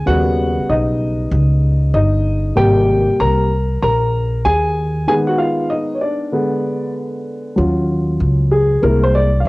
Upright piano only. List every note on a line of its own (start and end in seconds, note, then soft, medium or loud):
0.06 2.53 C#3 medium
0.06 2.53 G3 medium
0.06 2.53 B3 medium
0.06 0.66 F#4 medium
0.06 0.71 F#5 loud
0.69 1.91 D#4 medium
0.69 1.91 D#5 medium
1.94 2.53 D#4 medium
1.94 2.59 D#5 medium
2.56 3.46 C3 medium
2.56 3.46 G3 medium
2.56 3.47 A#3 medium
2.56 3.16 G4 medium
2.56 3.16 G5 loud
3.20 3.79 A#4 medium
3.20 3.81 A#5 medium
3.82 4.41 A#4 medium
3.82 4.47 A#5 medium
4.45 5.04 G#4 medium
4.45 5.07 G#5 loud
5.07 6.28 D#3 medium
5.07 6.29 G#3 medium
5.07 6.29 B3 medium
5.07 5.14 G#4 medium
5.07 5.13 G#5 loud
5.27 5.38 F#4 medium
5.27 5.39 F#5 medium
5.38 5.68 F4 medium
5.38 5.71 F5 medium
5.70 5.95 D#4 medium
5.70 5.97 D#5 medium
5.95 6.00 C#5 medium
6.01 6.91 D4 medium
6.01 6.91 D5 medium
6.32 7.53 D3 medium
6.32 7.53 G#3 soft
6.32 7.54 B3 medium
7.56 8.78 F#3 medium
7.56 8.78 C#4 soft
7.56 8.78 F4 medium
8.52 8.84 G#4 medium
8.82 9.27 G#3 medium
8.82 9.27 A#3 soft
8.82 9.28 E4 medium
8.82 9.04 A#4 medium
9.04 9.13 C5 medium
9.15 9.41 D5 medium
9.40 9.45 F5 medium